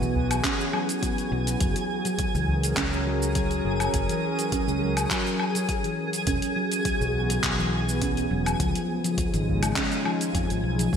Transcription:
0.00 0.40 B1 medium
0.00 1.61 E3 medium
0.00 0.15 E3 medium
0.00 1.61 B3 medium
0.00 3.31 F#4 medium
0.00 1.61 G#4 medium
0.00 10.94 G#4 medium
0.00 shaker soft
0.16 udu medium
0.31 closed hi-hat soft
0.31 low woodblock medium
0.31 shaker medium
0.44 0.53 C#4 medium
0.44 kick loud
0.44 clap medium
0.44 closed hi-hat medium
0.44 shaker medium
0.61 shaker soft
0.73 0.88 F#3 medium
0.73 low woodblock medium
0.89 closed hi-hat soft
0.89 shaker medium
1.03 1.17 F#3 medium
1.03 kick loud
1.03 closed hi-hat medium
1.03 shaker medium
1.18 closed hi-hat soft
1.18 shaker soft
1.32 1.55 B1 loud
1.47 1.59 F#3 medium
1.47 closed hi-hat soft
1.47 shaker medium
1.60 1.73 F#1 medium
1.60 1.75 F#3 medium
1.60 6.27 F#3 medium
1.60 kick loud
1.60 closed hi-hat medium
1.60 udu medium
1.60 shaker medium
1.75 9.53 G#4 medium
1.75 closed hi-hat soft
1.75 shaker soft
1.95 7.12 C#4 medium
1.95 7.20 A#4 medium
2.05 2.18 F#3 medium
2.05 closed hi-hat soft
2.05 shaker medium
2.18 kick loud
2.18 closed hi-hat medium
2.18 udu medium
2.18 shaker medium
2.35 2.73 C#2 medium
2.35 2.48 E3 medium
2.35 shaker soft
2.48 udu medium
2.63 closed hi-hat soft
2.63 shaker medium
2.77 3.60 C#2 medium
2.77 2.86 C#4 medium
2.77 kick loud
2.77 clap medium
2.77 closed hi-hat medium
2.77 shaker medium
2.93 shaker soft
3.06 3.21 F#3 medium
3.22 shaker medium
3.35 3.50 F#3 medium
3.35 kick loud
3.35 closed hi-hat medium
3.35 shaker medium
3.51 closed hi-hat soft
3.51 shaker soft
3.65 3.88 F#1 medium
3.80 3.93 F#3 medium
3.80 closed hi-hat soft
3.80 low woodblock medium
3.80 shaker medium
3.93 4.06 F#1 medium
3.93 kick medium
3.93 closed hi-hat medium
3.93 udu medium
3.93 shaker medium
4.09 4.22 E3 medium
4.09 closed hi-hat soft
4.09 shaker soft
4.39 closed hi-hat soft
4.39 shaker medium
4.52 4.61 C#4 medium
4.52 kick loud
4.52 closed hi-hat medium
4.52 udu medium
4.52 shaker soft
4.68 5.06 C#2 medium
4.68 shaker soft
4.82 4.96 F#3 medium
4.82 udu medium
4.97 closed hi-hat soft
4.97 low woodblock medium
4.97 shaker medium
5.11 5.25 F#3 medium
5.11 kick loud
5.11 clap medium
5.11 closed hi-hat medium
5.11 shaker medium
5.27 shaker soft
5.40 low woodblock medium
5.55 5.68 F#3 medium
5.55 closed hi-hat soft
5.55 shaker medium
5.69 kick loud
5.69 closed hi-hat medium
5.69 shaker soft
5.84 5.97 E3 medium
5.84 closed hi-hat soft
5.84 shaker soft
6.13 closed hi-hat soft
6.13 shaker medium
6.26 6.39 E1 medium
6.26 8.60 E3 medium
6.26 6.36 C#4 medium
6.26 kick loud
6.26 closed hi-hat medium
6.26 udu medium
6.26 shaker medium
6.42 8.60 F#4 medium
6.42 closed hi-hat soft
6.42 shaker soft
6.51 9.53 B3 medium
6.56 6.71 F#3 medium
6.72 closed hi-hat soft
6.72 shaker medium
6.85 7.00 F#3 medium
6.85 kick loud
6.85 closed hi-hat medium
6.85 udu medium
6.85 shaker soft
7.01 7.39 B1 medium
7.01 shaker soft
7.14 udu medium
7.30 7.43 F#3 medium
7.30 closed hi-hat soft
7.30 shaker medium
7.43 8.26 B1 medium
7.43 kick loud
7.43 clap medium
7.43 closed hi-hat medium
7.43 shaker soft
7.59 7.72 E3 medium
7.59 shaker soft
7.89 shaker medium
8.01 8.10 C#4 medium
8.01 kick medium
8.01 closed hi-hat medium
8.01 shaker soft
8.17 closed hi-hat soft
8.17 shaker soft
8.31 8.54 E1 medium
8.31 8.45 F#3 medium
8.46 closed hi-hat soft
8.46 low woodblock medium
8.46 shaker medium
8.60 8.72 C#2 medium
8.60 10.93 C#3 medium
8.60 8.75 F3 medium
8.60 kick loud
8.60 closed hi-hat medium
8.60 udu loud
8.60 shaker medium
8.74 10.93 G#3 medium
8.74 closed hi-hat soft
8.74 shaker soft
8.92 10.93 D#4 medium
9.04 9.17 F3 medium
9.04 closed hi-hat soft
9.04 shaker medium
9.15 10.93 F4 medium
9.15 kick loud
9.15 closed hi-hat medium
9.15 udu medium
9.15 shaker soft
9.34 9.71 G#1 medium
9.34 9.47 D#3 medium
9.34 closed hi-hat soft
9.34 shaker soft
9.49 udu medium
9.63 closed hi-hat soft
9.63 low woodblock medium
9.63 shaker medium
9.76 9.85 C#4 medium
9.76 kick loud
9.76 clap medium
9.76 closed hi-hat medium
9.76 shaker medium
9.92 closed hi-hat soft
9.92 shaker soft
10.05 10.20 F3 medium
10.05 low woodblock medium
10.21 closed hi-hat soft
10.21 shaker medium
10.35 10.47 F2 loud
10.35 10.49 F3 medium
10.35 kick loud
10.35 closed hi-hat medium
10.35 shaker soft
10.50 10.61 G#1 loud
10.50 closed hi-hat soft
10.50 shaker soft
10.64 10.87 B1 loud
10.79 10.92 F3 medium
10.79 closed hi-hat soft
10.79 shaker medium
10.93 10.97 F#1 medium
10.93 10.97 F#3 medium
10.93 10.97 E5 medium
10.93 kick loud
10.93 udu medium
10.93 shaker soft

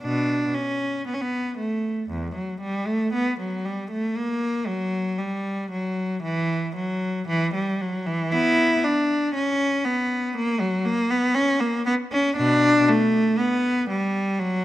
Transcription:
0.01 0.51 B2 medium
0.01 0.51 D4 medium
0.54 1.07 C#4 medium
1.06 1.13 B3 medium
1.14 1.21 C#4 medium
1.21 1.58 B3 medium
1.57 2.08 A3 medium
2.09 2.35 E2 medium
2.35 2.60 F#3 medium
2.61 2.86 G3 medium
2.87 3.13 A3 medium
3.13 3.38 B3 medium
3.39 3.64 F#3 medium
3.65 3.90 G3 medium
3.91 4.15 A3 medium
4.17 4.67 A#3 medium
4.67 5.18 F#3 medium
5.18 5.71 G3 medium
5.70 6.22 F#3 medium
6.23 6.74 E3 medium
6.75 7.26 F#3 medium
7.28 7.53 E3 medium
7.54 7.79 G3 medium
7.81 8.06 F#3 medium
8.07 8.31 E3 medium
8.32 8.79 B3 medium
8.32 8.83 E4 loud
8.84 9.34 D4 medium
9.35 9.84 C#4 medium
9.85 10.35 B3 medium
10.36 10.60 A#3 loud
10.60 10.85 F#3 medium
10.85 11.10 A#3 medium
11.10 11.35 B3 medium
11.35 11.60 C#4 loud
11.60 11.85 A#3 medium
11.86 11.94 B3 loud
12.12 12.36 C#4 medium
12.36 12.84 B2 medium
12.36 12.86 D4 loud
12.88 13.38 A3 loud
13.38 13.89 B3 medium
13.89 14.38 G3 medium
14.39 14.65 F#3 medium

